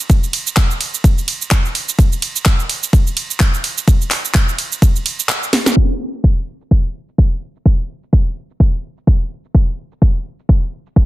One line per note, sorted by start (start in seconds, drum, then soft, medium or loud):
0.10 kick loud
0.10 ride medium
0.10 shaker medium
0.23 shaker soft
0.33 open hi-hat loud
0.33 ride medium
0.47 shaker medium
0.56 kick loud
0.56 clap loud
0.56 ride medium
0.56 shaker medium
0.71 shaker soft
0.81 open hi-hat medium
0.81 ride medium
0.94 shaker medium
1.04 kick loud
1.04 ride medium
1.04 shaker medium
1.18 shaker soft
1.28 open hi-hat loud
1.28 ride medium
1.42 shaker medium
1.51 kick loud
1.51 clap loud
1.51 ride medium
1.51 shaker medium
1.65 shaker soft
1.75 open hi-hat medium
1.75 ride medium
1.89 shaker medium
1.99 kick loud
1.99 ride medium
1.99 shaker medium
2.12 shaker soft
2.22 open hi-hat loud
2.22 ride medium
2.36 shaker medium
2.45 kick loud
2.45 clap loud
2.45 shaker medium
2.60 shaker soft
2.69 open hi-hat medium
2.69 ride medium
2.83 shaker medium
2.93 kick loud
2.93 ride medium
2.93 shaker medium
3.07 shaker soft
3.17 open hi-hat loud
3.17 ride medium
3.31 shaker medium
3.40 kick loud
3.40 clap loud
3.40 ride medium
3.40 shaker medium
3.54 shaker soft
3.64 open hi-hat medium
3.64 ride medium
3.78 shaker medium
3.88 kick loud
3.88 ride medium
3.88 shaker medium
4.01 shaker soft
4.11 clap medium
4.11 open hi-hat loud
4.11 ride medium
4.25 shaker medium
4.34 kick loud
4.34 clap loud
4.34 ride medium
4.34 shaker medium
4.49 shaker soft
4.58 open hi-hat medium
4.58 ride medium
4.72 shaker medium
4.82 kick loud
4.82 ride medium
4.82 shaker medium
4.96 shaker soft
5.06 open hi-hat loud
5.06 ride medium
5.20 shaker medium
5.29 clap loud
5.29 ride medium
5.29 shaker medium
5.43 shaker soft
5.53 snare medium
5.53 open hi-hat medium
5.53 ride medium
5.66 snare loud
5.66 shaker medium
5.77 kick loud
5.90 shaker soft
6.14 shaker medium
6.24 kick loud
6.24 shaker medium
6.38 shaker soft
6.61 shaker medium
6.71 kick loud
6.71 shaker medium
6.85 shaker soft
7.09 shaker medium
7.18 kick loud
7.18 shaker medium
7.32 shaker soft
7.56 shaker medium
7.66 kick loud
7.66 shaker medium
7.79 shaker soft
8.03 shaker medium
8.13 kick loud
8.13 shaker medium
8.27 shaker soft
8.50 shaker medium
8.60 kick loud
8.60 shaker medium
8.74 shaker soft
8.98 shaker medium
9.07 kick loud
9.07 shaker medium
9.21 shaker soft
9.45 shaker medium
9.55 kick loud
9.55 shaker medium
9.68 shaker soft
9.92 shaker medium
10.02 kick loud
10.02 shaker medium
10.16 shaker soft
10.39 shaker medium
10.49 kick loud
10.49 shaker medium
10.63 shaker soft
10.86 shaker medium
10.96 kick loud
10.96 shaker soft